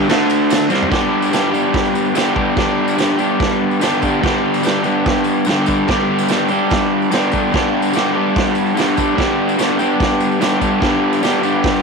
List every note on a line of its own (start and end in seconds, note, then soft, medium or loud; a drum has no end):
0.09 0.70 D3 loud
0.09 0.70 A3 medium
0.09 0.71 D4 loud
0.09 snare loud
0.09 ride loud
0.09 tambourine medium
0.30 ride medium
0.30 tambourine medium
0.50 snare loud
0.50 ride loud
0.50 tambourine loud
0.70 0.90 C3 medium
0.70 0.90 G3 loud
0.70 0.91 C4 medium
0.70 snare medium
0.70 tambourine medium
0.82 floor tom loud
0.89 2.14 G2 loud
0.89 1.53 D3 medium
0.89 1.31 G3 medium
0.89 1.32 B3 medium
0.89 1.33 D4 medium
0.89 1.34 G4 medium
0.89 kick loud
0.89 snare loud
0.89 tambourine soft
0.89 crash soft
1.22 tambourine medium
1.31 1.54 G3 medium
1.31 1.54 B3 medium
1.31 1.53 D4 medium
1.31 1.51 G4 medium
1.31 snare loud
1.31 tambourine loud
1.31 crash soft
1.51 2.15 G3 medium
1.51 2.16 B3 medium
1.51 2.16 D4 medium
1.51 2.17 G4 medium
1.51 tambourine medium
1.74 kick loud
1.74 snare loud
1.74 crash medium
1.85 tambourine soft
1.95 tambourine medium
2.05 tambourine soft
2.14 2.55 G2 medium
2.14 2.56 D3 loud
2.14 2.38 G3 loud
2.14 2.37 B3 loud
2.14 2.36 D4 medium
2.14 2.34 G4 loud
2.14 snare loud
2.14 tambourine loud
2.14 crash medium
2.26 tambourine soft
2.35 2.57 G3 medium
2.35 2.58 B3 medium
2.35 2.59 D4 medium
2.35 2.59 G4 medium
2.35 kick medium
2.56 3.80 G2 loud
2.56 3.19 D3 loud
2.56 2.96 G3 medium
2.56 2.98 B3 loud
2.56 2.99 D4 loud
2.56 3.00 G4 loud
2.56 kick loud
2.56 snare loud
2.56 tambourine soft
2.56 crash medium
2.88 tambourine medium
2.97 3.20 G3 medium
2.97 3.19 B3 medium
2.97 3.18 D4 medium
2.97 3.17 G4 medium
2.97 snare loud
2.97 tambourine loud
2.97 crash soft
3.17 3.81 G3 medium
3.17 3.82 B3 medium
3.17 3.82 D4 medium
3.17 3.83 G4 medium
3.17 tambourine medium
3.40 kick loud
3.40 snare loud
3.40 crash medium
3.49 tambourine soft
3.71 tambourine soft
3.80 4.21 G2 medium
3.80 4.20 D3 medium
3.80 4.04 G3 medium
3.80 4.04 B3 loud
3.80 4.02 D4 loud
3.80 4.01 G4 loud
3.80 snare loud
3.80 tambourine loud
3.80 crash soft
3.92 tambourine soft
4.01 4.22 G3 medium
4.01 4.23 B3 medium
4.01 4.23 D4 medium
4.01 4.24 G4 medium
4.01 kick medium
4.01 tambourine medium
4.21 5.46 G2 loud
4.21 4.84 D3 medium
4.21 4.62 G3 loud
4.21 4.64 B3 medium
4.21 4.65 D4 loud
4.21 4.65 G4 loud
4.21 kick loud
4.21 tambourine soft
4.21 crash medium
4.26 snare loud
4.54 tambourine medium
4.63 4.86 G3 medium
4.63 4.85 B3 medium
4.63 4.84 D4 medium
4.63 4.83 G4 medium
4.63 snare loud
4.63 tambourine medium
4.63 crash soft
4.83 5.48 G3 medium
4.83 5.48 B3 medium
4.83 5.49 D4 medium
4.83 5.49 G4 medium
4.83 tambourine medium
5.06 kick loud
5.06 snare loud
5.06 crash medium
5.14 tambourine soft
5.24 tambourine medium
5.35 tambourine soft
5.45 5.88 G2 loud
5.45 5.88 D3 loud
5.45 5.70 G3 loud
5.45 tambourine loud
5.45 crash medium
5.49 5.69 B3 loud
5.49 5.68 D4 loud
5.49 5.67 G4 loud
5.49 snare loud
5.66 5.90 B3 medium
5.66 5.90 D4 medium
5.66 5.91 G4 medium
5.66 kick medium
5.66 tambourine medium
5.71 5.89 G3 medium
5.88 7.11 G2 loud
5.88 6.51 D3 medium
5.88 6.29 G3 medium
5.88 6.30 B3 loud
5.88 6.31 D4 loud
5.88 6.32 G4 loud
5.88 kick loud
5.88 snare loud
5.88 crash medium
6.18 tambourine medium
6.28 6.52 G3 medium
6.28 6.51 B3 medium
6.28 6.50 D4 medium
6.28 snare medium
6.28 tambourine loud
6.28 crash medium
6.32 6.49 G4 medium
6.38 tambourine soft
6.48 7.13 B3 medium
6.48 7.14 D4 medium
6.48 7.14 G4 medium
6.48 tambourine medium
6.53 7.12 G3 medium
6.59 tambourine soft
6.70 kick loud
6.70 snare loud
6.70 tambourine soft
6.70 crash medium
6.80 tambourine soft
7.02 tambourine soft
7.11 7.52 G2 loud
7.11 7.52 D3 medium
7.11 7.34 G3 medium
7.11 7.34 B3 loud
7.11 7.33 D4 loud
7.11 7.31 G4 loud
7.11 snare loud
7.11 tambourine loud
7.11 crash medium
7.23 tambourine soft
7.31 7.54 G3 medium
7.31 7.54 B3 medium
7.31 7.55 D4 medium
7.31 7.56 G4 medium
7.31 kick medium
7.31 tambourine medium
7.53 8.74 G2 medium
7.53 8.16 D3 medium
7.53 7.93 G3 loud
7.53 7.95 B3 medium
7.53 7.95 D4 loud
7.53 7.96 G4 loud
7.53 kick loud
7.53 snare loud
7.53 tambourine soft
7.53 crash soft
7.82 tambourine medium
7.93 8.17 G3 medium
7.93 8.16 B3 medium
7.93 8.15 D4 medium
7.93 8.13 G4 medium
7.93 snare loud
7.93 tambourine medium
7.93 crash medium
8.14 8.76 G3 medium
8.14 8.76 B3 medium
8.14 8.77 D4 medium
8.14 8.77 G4 medium
8.36 kick loud
8.36 snare loud
8.36 crash medium
8.45 tambourine soft
8.55 tambourine medium
8.66 tambourine soft
8.75 9.15 G2 medium
8.75 9.15 D3 medium
8.75 8.99 G3 medium
8.75 8.98 B3 medium
8.75 8.97 D4 loud
8.75 8.96 G4 loud
8.75 tambourine loud
8.75 crash medium
8.80 snare loud
8.87 tambourine soft
8.96 9.17 G3 medium
8.96 9.17 B3 medium
8.96 9.18 D4 medium
8.96 9.19 G4 medium
8.96 kick medium
8.96 tambourine medium
9.16 10.40 G2 medium
9.16 9.79 D3 medium
9.16 9.57 G3 loud
9.16 9.58 B3 medium
9.16 9.59 D4 loud
9.16 9.60 G4 loud
9.16 kick loud
9.16 tambourine soft
9.16 crash medium
9.20 snare loud
9.49 tambourine medium
9.57 9.81 G3 medium
9.57 9.80 B3 medium
9.57 9.79 D4 medium
9.57 9.78 G4 medium
9.57 snare medium
9.57 tambourine loud
9.57 crash medium
9.78 10.41 G3 medium
9.78 10.42 B3 medium
9.78 10.42 D4 medium
9.78 10.43 G4 medium
9.78 tambourine medium
10.00 kick loud
10.00 snare loud
10.00 crash medium
10.10 tambourine soft
10.20 tambourine medium
10.31 tambourine soft
10.40 10.80 G2 medium
10.40 10.81 D3 loud
10.40 10.63 G3 loud
10.40 10.62 B3 loud
10.40 10.61 D4 loud
10.40 10.60 G4 loud
10.40 snare loud
10.40 tambourine loud
10.40 crash medium
10.60 10.82 G3 medium
10.60 10.82 B3 medium
10.60 10.83 D4 medium
10.60 10.84 G4 medium
10.60 kick medium
10.60 tambourine medium
10.81 11.82 G2 medium
10.81 11.43 D3 loud
10.81 11.21 G3 loud
10.81 11.22 B3 medium
10.81 11.23 D4 loud
10.81 11.24 G4 loud
10.81 kick loud
10.81 snare loud
10.81 tambourine soft
10.81 crash medium
11.13 tambourine medium
11.22 11.45 G3 medium
11.22 11.44 B3 medium
11.22 11.43 D4 medium
11.22 11.41 G4 medium
11.22 snare loud
11.22 tambourine loud
11.22 crash soft
11.42 11.82 G3 medium
11.42 11.82 B3 medium
11.42 11.82 D4 medium
11.42 11.82 G4 medium
11.42 tambourine medium
11.64 kick loud
11.64 snare loud
11.64 crash medium
11.74 tambourine soft